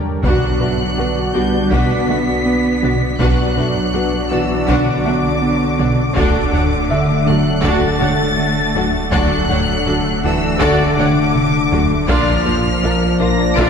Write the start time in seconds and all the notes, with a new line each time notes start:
Already playing: D3 D4 G4 A#4
0.23 B1 B2 D3 F#3 B3 D4 F#4 B4 D5 F#5 F#6, taiko
0.60 B1 B2 D4 F#4 A4 B4 E5, taiko low-mid
0.98 B1 B3 D4 F#4 B4 F#5
1.34 B1 G3 B3 D4 F#4 D5 G6
1.71 B1 B2 B3 D4 F#4 B4 F#5 B6, taiko
2.09 B1 B3 D4 F#4 A4 E5
2.46 B3
2.83 B1 B2 D4 F#4 D5
3.19 B1 B2 F#3 B3 D4 F#4 B4 D5 F#5 F#6, taiko
3.57 B1 B2 D4 F#4 A4 B4 E5, taiko low-mid
3.94 B1 B3 D4 F#4 B4 F#5
4.31 B1 E3 B3 D4 F#4 D5 E6
4.67 B1 B2 D3 B3 D4 F#4 B4 F#5 D6, taiko
5.05 B1 B3 D4 F#4 A4 E5
5.42 B3
5.78 B1 B2 D4 F#4 D5
6.16 D1 D2 D3 A3 D4 F#4 A4 D5 F#5 D6, taiko
6.53 D2 D4 G4 C#5 F#5, taiko low-mid
6.90 D2 D3 A3 D4 F#4 A4 D5 E5
7.27 D2 D3 F#3 A3 D4 F#4 A4 F#6
7.63 D2 D3 A3 D4 F#4 A4 D5 A6, taiko
8.01 D2 D3 A3 D4 G4 C#5 F#5
8.38 D3
8.75 D2 F#3 D4 F#4 A4
9.11 D1 D2 D3 F#3 A3 D4 F#4 A4 D5 F#5 F#6, taiko
9.49 D2 D4 G4 C#5 F#5, taiko low-mid
9.86 D2 D3 A3 D4 F#4 A4 D5
10.24 D2 D3 E3 A3 D4 F#4 A4 E6
10.60 D2 D3 D4 F#4 A4 D5 D6, taiko
10.97 D2 D3 A3 D4 G4 C#5 F#5, taiko mid
11.35 D3, taiko mid
11.72 D2 F#3 D4 F#4 A4, taiko low
12.08 A#1 A#2 F3 A#3 D4 F4 A#4 D5 F6, taiko
12.45 A#1 A#2 A#3 D4 F4 A4 C5, taiko low-mid
12.83 A#1 A#3 D4 F4 A#4 D5
13.20 A#1 A#3 D4 F4 A#4 A#6
13.56 A#1 A#2 A#3 D4 F4 A#4 D5 D7, taiko